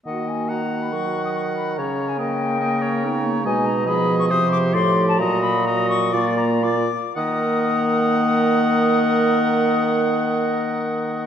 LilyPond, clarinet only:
\new Staff \with { instrumentName = "Clarinet" } { \time 4/4 \key ees \minor \tempo 4 = 130 ges'4 ges'4 bes'2~ | bes'4 bes'2 ees'4 | ees'4 aes'4 g'2 | ges'2 f'4 f'8 r8 |
bes'1~ | bes'1 | }